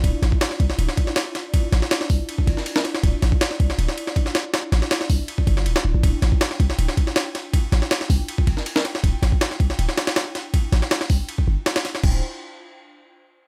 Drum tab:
CC |----------------|----------------|----------------|----------------|
RD |x-x-x-x-x-x-x-x-|x-x-x---x-x-x-x-|x-x-x-x-x-x-x-x-|x-x-x---x-x-x---|
HH |----------------|------o---------|----------------|------o---------|
SD |--o-oo-o-o-oo-o-|--oooo-----o-ooo|--o-oo-o-o-o-oo-|o-oooo-----o-o--|
BD |o--o--o---o-----|o-----o--oo-----|o--o--o-----o---|------o--oo-----|

CC |----------------|----------------|----------------|----------------|
RD |x-x-x-x-x-x-x-x-|x-x-x---x-x-x-x-|x-x-x-x-x-xxx-x-|x-x-x---x---xxx-|
HH |----------------|------o---------|----------------|------o---------|
SD |--o-oo-o-o-oo-o-|--oooo-----o-ooo|--o-oo-o-oooo-o-|--oooo------oooo|
BD |o--o--o---o-----|o-----o--oo-----|o--o--o---------|o-----o--o------|

CC |x---------------|
RD |----------------|
HH |----------------|
SD |----------------|
BD |o---------------|